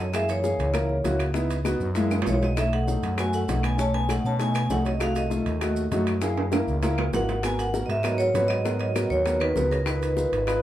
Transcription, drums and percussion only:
0.14 high bongo, high timbale, claves, maracas
0.29 high bongo, high timbale, maracas
0.44 high bongo, maracas
0.59 high timbale, maracas
0.74 high bongo, high timbale, claves, maracas
0.89 high bongo
1.04 high bongo, low bongo, high timbale, low timbale, maracas
1.19 high bongo, high timbale, claves, maracas
1.34 high bongo, maracas
1.50 high bongo, high timbale, maracas
1.65 high bongo, high timbale, claves, maracas
1.80 maracas
1.95 high bongo, high timbale, maracas
2.11 high bongo, high timbale, claves, maracas
2.22 low timbale
2.26 high bongo, low bongo, maracas
2.33 low timbale
2.42 high bongo, low timbale, maracas
2.57 high bongo, high timbale, claves, maracas
2.73 high bongo, high timbale
2.88 high bongo, maracas
3.03 high timbale, maracas
3.18 high bongo, high timbale, claves, maracas
3.33 high bongo, maracas
3.49 high bongo, low bongo, high timbale, low timbale, maracas
3.63 high bongo, high timbale, claves, maracas
3.79 high bongo, maracas
3.94 high bongo, high timbale
4.09 high bongo, high timbale, claves, maracas
4.25 maracas
4.40 high bongo, high timbale, maracas
4.55 high bongo, high timbale, claves, maracas
4.70 high bongo, low bongo, low timbale, maracas
4.85 high bongo, high timbale, maracas
5.00 high bongo, high timbale, claves, maracas
5.15 high bongo, high timbale, maracas
5.31 high bongo, maracas
5.46 high timbale, maracas
5.61 high bongo, high timbale, claves, maracas
5.76 high bongo, maracas
5.92 high bongo, low bongo, high timbale, maracas
6.07 high bongo, high timbale, claves, maracas
6.21 high bongo, high timbale, maracas
6.37 high bongo, high timbale
6.52 high bongo, high timbale, claves, maracas
6.68 maracas
6.83 high bongo, low timbale, maracas
6.98 high bongo, low timbale, claves
7.13 high bongo, low bongo, low timbale, maracas
7.28 high bongo, low timbale, maracas
7.43 high bongo, high timbale, claves, maracas
7.58 high bongo, high timbale, maracas
7.74 high bongo, maracas
7.90 high timbale, maracas
8.04 high bongo, high timbale, claves, maracas
8.20 high bongo, maracas
8.35 high bongo, low bongo, high timbale, low timbale, maracas
8.50 high bongo, high timbale, claves, maracas
8.65 high bongo, maracas
8.81 high bongo, high timbale
8.96 high bongo, high timbale, claves, maracas
9.11 maracas
9.26 high bongo, high timbale, maracas
9.41 high bongo, high timbale, claves
9.56 high bongo, low bongo, low timbale, maracas
9.71 high bongo, high timbale, maracas
9.86 high bongo, high timbale, claves, maracas
10.01 high bongo, high timbale, maracas
10.17 high bongo, maracas
10.33 high timbale, maracas
10.47 high bongo, high timbale, claves, maracas

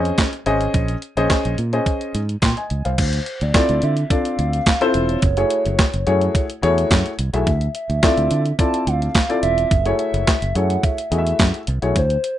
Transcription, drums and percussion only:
0.05 closed hi-hat
0.18 kick, snare, clap, closed hi-hat
0.33 closed hi-hat
0.46 closed hi-hat
0.61 closed hi-hat
0.74 kick, closed hi-hat
0.88 closed hi-hat
1.02 closed hi-hat
1.17 closed hi-hat
1.30 kick, snare, clap, closed hi-hat
1.45 closed hi-hat
1.58 closed hi-hat
1.73 closed hi-hat
1.86 kick, closed hi-hat
2.01 closed hi-hat
2.15 closed hi-hat
2.29 closed hi-hat
2.42 kick, snare, clap, closed hi-hat
2.57 closed hi-hat
2.70 closed hi-hat
2.85 closed hi-hat
2.98 kick, closed hi-hat, crash
3.13 closed hi-hat
3.26 closed hi-hat
3.41 closed hi-hat
3.54 kick, snare, clap, closed hi-hat
3.69 closed hi-hat
3.82 closed hi-hat
3.97 closed hi-hat
4.10 kick, closed hi-hat
4.25 closed hi-hat
4.39 closed hi-hat
4.53 closed hi-hat
4.66 kick, snare, clap, closed hi-hat
4.81 closed hi-hat
4.94 closed hi-hat
5.09 closed hi-hat
5.22 kick, closed hi-hat
5.37 closed hi-hat
5.50 closed hi-hat
5.66 closed hi-hat
5.79 kick, snare, clap, closed hi-hat
5.94 closed hi-hat
6.07 closed hi-hat
6.21 closed hi-hat
6.35 kick, closed hi-hat
6.50 closed hi-hat
6.63 closed hi-hat
6.78 closed hi-hat
6.91 kick, snare, clap, closed hi-hat
7.06 closed hi-hat
7.19 closed hi-hat
7.34 closed hi-hat
7.47 kick, closed hi-hat
7.61 closed hi-hat
7.75 closed hi-hat
7.90 closed hi-hat
8.03 kick, snare, clap, closed hi-hat
8.18 closed hi-hat
8.31 closed hi-hat
8.46 closed hi-hat
8.59 kick, closed hi-hat
8.74 closed hi-hat
8.87 closed hi-hat
9.02 closed hi-hat
9.15 kick, snare, clap, closed hi-hat
9.30 closed hi-hat
9.43 closed hi-hat
9.58 closed hi-hat
9.71 kick, closed hi-hat
9.86 closed hi-hat
9.99 closed hi-hat
10.14 closed hi-hat
10.27 kick, snare, clap, closed hi-hat
10.42 closed hi-hat
10.55 closed hi-hat
10.70 closed hi-hat
10.83 kick, closed hi-hat
10.98 closed hi-hat
11.12 closed hi-hat
11.27 closed hi-hat
11.39 kick, snare, clap, closed hi-hat
11.54 closed hi-hat
11.67 closed hi-hat
11.82 closed hi-hat
11.96 kick, closed hi-hat
12.10 closed hi-hat
12.24 closed hi-hat

